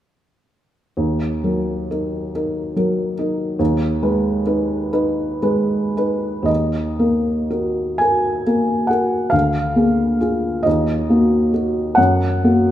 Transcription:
0.97 D#2
1.44 F#3 A#4
1.91 D#4 A#4
2.35 D#4 A#4
2.76 F#3 A#4
3.19 D#4 A#4
3.59 D#2
4.03 G#3 B4
4.46 D#4 B4
4.93 D#4 B4
5.43 G#3 B4
5.97 D#4 B4
6.43 D#2 D#5
6.99 A#3 A#4
7.50 F#4 A#4
7.98 F#4 A#4 G#5
8.47 A#3 A#4
8.87 F#4 A#4 F#5
9.30 D2 F5
9.76 A#3 G#4
10.21 F4 G#4
10.63 D#2 D#5
11.10 A#3 F#4
11.54 F#4
11.95 F#2 F#5
12.44 A#3 F#4

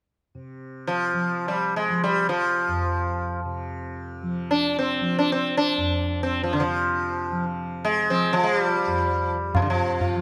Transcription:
0.35 C3
0.87 F3
1.13 F3
1.48 G3
1.76 G#3
1.90 F3
2.04 G3
2.29 F3
2.68 F2
3.45 C3
4.23 F3
4.51 D4
4.79 C4
5.01 F3
5.19 D4
5.32 C4
5.57 D4
5.78 F2
6.23 C4
6.43 F3
6.53 C3 D3
6.60 F3
7.31 F3
7.85 G#3
8.10 F3 C4
8.33 F3
8.43 G#3
8.57 G3
8.87 F2
9.53 C3 F3, tabla na, tabla ge
9.62 D3
9.70 F3
10.01 F4, tabla tin, tabla ge
10.16 F3

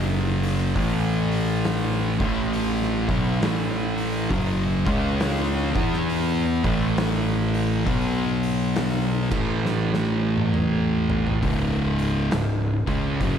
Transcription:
Already playing: F#1 F#2 C#3 F#3
0.43 open hi-hat
0.76 A1 A2 E3 A3, kick, open hi-hat
1.32 open hi-hat
1.64 snare, open hi-hat
2.20 A1 A2 E3 A3, kick, open hi-hat
2.53 open hi-hat
2.82 snare
3.09 B1 B2 F#3 B3, kick, open hi-hat
3.41 A1 A2 E3 A3, snare, open hi-hat
3.98 open hi-hat
4.30 F#1 F#2 C#3 F#3, kick, open hi-hat
4.85 C#2 C#3 G#3 C#4, kick, open hi-hat
5.20 snare, open hi-hat
5.74 E2 E3 B3 E4, kick, open hi-hat
5.93 snare
6.09 open hi-hat
6.64 A1 A2 E3 A3, kick, open hi-hat
6.97 snare, open hi-hat
7.54 open hi-hat
7.86 B1 B2 F#3 B3, kick, open hi-hat
8.43 open hi-hat
8.76 snare, open hi-hat
9.31 A1 A2 E3 A3, kick, crash
9.65 snare
9.94 snare
10.37 high tom
10.54 mid tom
11.10 floor tom
11.27 floor tom
11.43 C#1 C#2 G#2 C#3, kick, open hi-hat
11.99 open hi-hat
12.31 C#1 C#2 G#2, snare, open hi-hat
12.87 C#2 C#3 G#3 C#4, kick, open hi-hat
13.20 F#1 F#2 C#3 F#3, kick, open hi-hat

